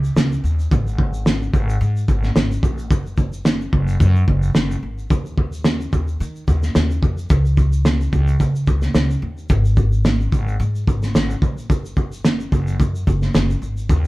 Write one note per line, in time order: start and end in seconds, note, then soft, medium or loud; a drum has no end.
0.00 0.11 C#2 medium
0.04 shaker medium
0.16 0.39 C#2 medium
0.16 snare loud
0.16 shaker medium
0.32 shaker medium
0.44 0.66 D#2 medium
0.44 shaker medium
0.59 shaker soft
0.71 1.50 G#1 loud
0.71 kick loud
0.71 shaker medium
0.87 shaker soft
0.98 kick medium
1.14 shaker medium
1.26 snare loud
1.26 shaker medium
1.42 shaker soft
1.54 1.76 G#1 medium
1.54 kick medium
1.54 shaker soft
1.69 shaker medium
1.81 2.03 G#2 loud
1.81 shaker medium
1.97 shaker medium
2.08 2.31 G#1 medium
2.08 kick medium
2.08 shaker medium
2.23 snare soft
2.23 shaker medium
2.36 2.58 G#1 medium
2.36 snare loud
2.36 shaker medium
2.52 shaker medium
2.63 2.91 A#1 medium
2.63 kick loud
2.63 shaker medium
2.78 shaker medium
2.91 3.69 F#1 loud
2.91 kick loud
2.91 shaker medium
3.06 shaker medium
3.17 kick medium
3.17 shaker medium
3.33 shaker medium
3.45 snare loud
3.45 shaker medium
3.61 shaker soft
3.73 3.95 F#1 medium
3.73 kick medium
3.88 shaker medium
4.00 4.23 F#2 loud
4.00 kick medium
4.00 shaker medium
4.16 shaker medium
4.28 4.50 F#1 loud
4.28 kick medium
4.43 shaker medium
4.55 snare loud
4.55 shaker medium
4.71 shaker medium
4.83 5.05 G#1 medium
4.98 shaker medium
5.10 5.89 D#2 loud
5.10 kick loud
5.10 shaker medium
5.26 shaker medium
5.38 kick medium
5.53 shaker medium
5.64 snare loud
5.64 shaker medium
5.81 shaker soft
5.93 6.15 D#2 medium
5.93 kick medium
5.93 shaker soft
6.08 shaker medium
6.20 6.43 D#3 loud
6.20 shaker medium
6.36 shaker medium
6.48 6.70 D#2 medium
6.48 kick medium
6.48 shaker medium
6.63 snare soft
6.63 shaker medium
6.75 6.98 D#2 medium
6.75 snare loud
6.75 shaker medium
6.91 shaker soft
7.02 7.25 F2 medium
7.02 kick loud
7.02 shaker medium
7.18 shaker medium
7.30 8.09 C#2 loud
7.30 kick loud
7.30 shaker medium
7.45 shaker soft
7.57 kick medium
7.57 shaker medium
7.72 shaker medium
7.85 snare loud
7.85 shaker medium
8.01 shaker soft
8.13 8.35 C#2 loud
8.13 kick medium
8.13 shaker soft
8.27 shaker medium
8.40 8.63 C#3 loud
8.40 kick medium
8.40 shaker medium
8.55 shaker medium
8.67 8.90 C#2 medium
8.67 kick medium
8.67 shaker medium
8.82 snare soft
8.82 shaker medium
8.95 9.17 C#2 medium
8.95 snare loud
8.95 shaker medium
9.10 shaker soft
9.22 9.45 D#2 medium
9.38 shaker medium
9.50 10.28 G#1 loud
9.50 kick loud
9.50 shaker medium
9.65 shaker medium
9.77 kick medium
9.77 shaker medium
9.92 shaker medium
10.05 snare loud
10.05 shaker medium
10.21 shaker soft
10.32 10.55 G#1 medium
10.32 kick medium
10.32 shaker soft
10.48 shaker medium
10.60 10.82 G#2 loud
10.60 shaker medium
10.76 shaker medium
10.87 11.10 G#1 medium
10.87 kick medium
10.87 shaker medium
11.03 snare soft
11.03 shaker medium
11.14 11.37 G#1 medium
11.14 snare loud
11.14 shaker medium
11.30 shaker medium
11.42 11.70 A#1 medium
11.42 kick loud
11.42 shaker medium
11.58 shaker medium
11.70 12.48 F#1 loud
11.70 kick loud
11.70 shaker medium
11.85 shaker medium
11.97 kick medium
11.97 shaker medium
12.12 shaker medium
12.25 snare loud
12.25 shaker medium
12.40 shaker soft
12.52 12.75 F#1 medium
12.52 kick medium
12.52 shaker soft
12.67 shaker medium
12.80 13.02 F#2 loud
12.80 kick medium
12.80 shaker medium
12.95 shaker medium
13.07 13.30 F#1 loud
13.07 kick medium
13.07 shaker medium
13.22 snare soft
13.22 shaker medium
13.34 13.57 F#1 medium
13.34 snare loud
13.34 shaker medium
13.50 shaker medium
13.62 13.84 G#1 medium
13.62 shaker medium
13.77 shaker medium
13.89 14.07 D#2 loud
13.89 kick loud
13.89 shaker medium